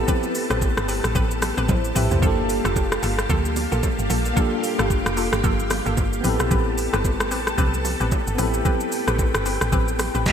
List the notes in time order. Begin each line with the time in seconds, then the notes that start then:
Already playing: B3 C4 E4 G4 A4 B4 A5
0.08 C4 G4 B4, kick, low conga, shaker
0.23 low bongo, shaker
0.35 open hi-hat, shaker
0.50 A1 C4 G4 B4, cross-stick, low bongo, shaker
0.61 kick, high bongo, shaker
0.77 G1, cross-stick, shaker
0.88 C4 G4 B4, open hi-hat, shaker
1.04 A1, cross-stick, shaker
1.15 A1 C4 G4 B4, kick, low conga, shaker
1.31 shaker
1.42 cross-stick, open hi-hat, low bongo, shaker
1.57 A1 C4 G4 B4, shaker
1.69 A1 E4 C5, kick, high tom, high bongo, low bongo, shaker
1.84 shaker
1.95 A#1 C4 G4 B4 E5, mid tom, open hi-hat, low conga, shaker
2.11 C2 E4 C5, floor tom, shaker
2.19 G1 A#3 D4 F4 A4 F5, kick, low conga, shaker
2.25 G4 A4
2.49 open hi-hat, shaker
2.64 F1 A#3 F4 A4, cross-stick, shaker
2.76 kick, high bongo, shaker
2.92 cross-stick, shaker
3.03 G1 A#3 F4 A4, open hi-hat, shaker
3.19 cross-stick, shaker
3.29 D2 A#3 F4 A4, kick, low conga, shaker
3.45 shaker
3.56 open hi-hat, low bongo, shaker
3.72 A#1 A#3 F4 A4, shaker
3.83 kick, high bongo, low bongo, shaker
3.99 G1, shaker
4.10 A#1 A#3 F4 A4, open hi-hat, low conga, shaker
4.25 shaker
4.33 A#3 D4 F4 A4 G5, kick, low conga, shaker
4.39 G4 A4
4.64 open hi-hat, shaker
4.79 G1 A#3 F4 A4, cross-stick, shaker
4.90 kick, high bongo, shaker
5.06 F1, cross-stick, shaker
5.17 A#3 F4 A4, open hi-hat, shaker
5.33 G1, cross-stick, shaker
5.43 G1 A#3 F4 A4, kick, low conga, shaker
5.60 shaker
5.70 cross-stick, open hi-hat, low bongo, shaker
5.86 G1 A#3 F4 A4, shaker
5.97 G1, kick, high bongo, low bongo, shaker
6.13 shaker
6.21 A1 B3 C4 E4 G4 A4 B4 A5, open hi-hat, low conga, shaker
6.27 G4 A4
6.40 A#1, cross-stick, shaker
6.51 A1 C4 G4 B4, kick, low conga, shaker
6.78 open hi-hat, shaker
6.93 G1 C4 G4 B4, cross-stick, shaker
7.04 kick, high bongo, shaker
7.20 cross-stick, shaker
7.31 A1 C4 G4 B4, open hi-hat, shaker
7.47 cross-stick, shaker
7.58 C2 C4 G4 B4, kick, low conga, shaker
7.74 shaker
7.85 open hi-hat, low bongo, shaker
8.00 A1 C4 G4 B4, shaker
8.12 kick, high bongo, low bongo, shaker
8.27 G1, shaker
8.35 A1 B3 C4 E4 G4 B4 G5, open hi-hat, low conga, shaker
8.41 G4 A4
8.54 shaker
8.65 C4 G4 B4, kick, low conga, shaker
8.80 shaker
8.92 open hi-hat, shaker
9.07 A1 C4 G4 B4, cross-stick, shaker
9.19 kick, high bongo, shaker
9.34 G1, cross-stick, shaker
9.45 C4 G4 B4, open hi-hat, shaker
9.61 A1, cross-stick, shaker
9.72 A1 C4 G4 B4, kick, high bongo, low conga, shaker
9.88 shaker
9.99 cross-stick, open hi-hat, low bongo, shaker
10.14 A1 C4 G4 B4, shaker
10.26 A1 A3, kick, snare, high bongo, low bongo, shaker